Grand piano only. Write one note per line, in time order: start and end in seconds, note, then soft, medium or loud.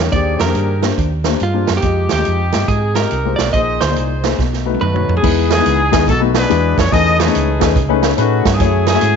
0.11 0.78 D#3 medium
0.11 0.39 A#3 medium
0.11 0.40 D4 medium
0.11 0.40 G4 medium
0.11 0.40 C5 medium
0.45 0.68 A#3 medium
0.45 0.68 D4 medium
0.45 0.68 G4 medium
0.45 0.68 C5 medium
0.82 1.06 A#3 medium
0.82 1.07 D4 medium
0.82 1.07 G4 medium
0.82 1.07 C5 medium
1.25 1.40 A#3 medium
1.25 1.40 D4 medium
1.25 1.40 G4 medium
1.25 1.41 C5 medium
1.54 1.75 A#3 medium
1.54 1.75 D4 medium
1.54 1.76 G4 medium
1.54 1.76 C5 medium
1.83 2.11 G#3 medium
1.83 2.11 F4 medium
1.83 2.11 G4 medium
1.83 2.11 D#5 medium
2.19 2.40 G#3 medium
2.19 2.40 F4 medium
2.19 2.40 G4 medium
2.19 2.40 D#5 medium
2.54 2.78 G#3 medium
2.54 2.78 F4 medium
2.54 2.78 G4 medium
2.54 2.78 D#5 medium
2.96 3.11 G#3 medium
2.96 3.11 F4 medium
2.96 3.12 G4 medium
2.96 3.12 D#5 medium
3.25 3.46 G#3 medium
3.25 3.46 F4 medium
3.25 3.46 G4 medium
3.25 3.47 C5 medium
3.55 4.20 A#2 soft
3.55 3.81 A#3 medium
3.55 3.82 D#4 medium
3.55 3.82 G#4 medium
3.55 3.82 C5 medium
3.89 4.10 A#3 medium
3.89 4.10 D#4 medium
3.89 4.10 G#4 medium
3.89 4.10 D5 medium
4.24 4.38 A#3 medium
4.24 4.39 D#4 medium
4.24 4.39 G#4 medium
4.24 4.39 C5 medium
4.39 5.04 B2 medium
4.66 4.81 A3 medium
4.66 4.81 D#4 medium
4.66 4.81 F#4 medium
4.66 4.81 B4 medium
4.94 5.15 A3 medium
4.94 5.15 D#4 medium
4.94 5.15 F#4 medium
4.94 5.15 C#5 medium
5.23 5.89 E3 medium
5.23 5.50 G#3 medium
5.23 5.50 B3 medium
5.23 5.51 D#4 medium
5.23 5.51 E4 medium
5.23 5.51 B4 medium
5.57 5.79 G#3 medium
5.57 5.79 B3 medium
5.57 5.79 D#4 medium
5.57 5.79 E4 medium
5.57 5.79 B4 medium
5.92 6.07 G#3 medium
5.92 6.07 B3 medium
5.92 6.07 D#4 medium
5.92 6.07 E4 medium
5.92 6.07 G#4 medium
6.08 6.47 B2 medium
6.20 6.42 A3 medium
6.20 6.42 B3 medium
6.20 6.42 D#4 medium
6.20 6.42 F#4 medium
6.20 6.42 B4 medium
6.49 6.89 E3 medium
6.49 6.82 G#3 medium
6.49 6.82 D4 medium
6.49 6.82 E4 medium
6.49 6.82 F#4 medium
6.49 6.82 B4 medium
6.92 7.57 E3 medium
6.92 7.19 A3 medium
6.92 7.19 C#4 medium
6.92 7.19 D#4 medium
6.92 7.19 G#4 medium
6.92 7.19 B4 medium
7.26 7.47 A3 medium
7.26 7.47 C#4 medium
7.26 7.47 D#4 medium
7.26 7.47 G#4 medium
7.26 7.48 C#5 medium
7.60 7.75 A3 medium
7.60 7.75 C#4 medium
7.60 7.76 D#4 medium
7.60 7.76 G#4 medium
7.60 7.76 B4 medium
7.89 8.10 A3 medium
7.89 8.10 C#4 medium
7.89 8.10 D#4 medium
7.89 8.10 G#4 medium
7.89 8.11 B4 loud
8.17 8.50 A3 medium
8.17 8.49 C#4 medium
8.17 8.50 D#4 medium
8.17 8.50 G#4 medium
8.17 8.50 B4 loud
8.60 8.87 A3 medium
8.60 8.87 E4 medium
8.60 8.87 F#4 medium
8.60 8.87 G#4 medium
8.60 8.88 C#5 medium
8.94 9.15 A3 medium
8.94 9.16 E4 medium
8.94 9.16 F#4 medium
8.94 9.16 G#4 medium
8.94 9.16 E5 medium